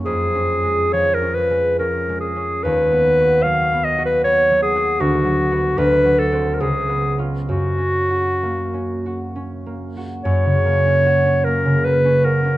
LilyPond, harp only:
\new Staff \with { instrumentName = "Harp" } { \time 3/4 \key fis \major \tempo 4 = 73 \tuplet 3/2 { <eis, cis'>8 cis'8 gis8 eis8 cis'8 gis8 cis'8 gis8 cis'8 } | \tuplet 3/2 { dis,8 b8 fis'8 fis8 b8 fis'8 b8 fis8 fis'8 } | \tuplet 3/2 { d,8 fis8 <b fis'>8 d,8 fis8 <c' fis'>8 cis,8 b8 <cis' eis'>8 } | \tuplet 3/2 { fis,8 cis'8 fis'8 ais8 cis'8 fis'8 cis'8 ais8 fis'8 } |
fis,16 cis16 ais16 cis'16 fis'16 cis'16 ais16 cis16 ais16 cis'16 fis'16 cis'16 | }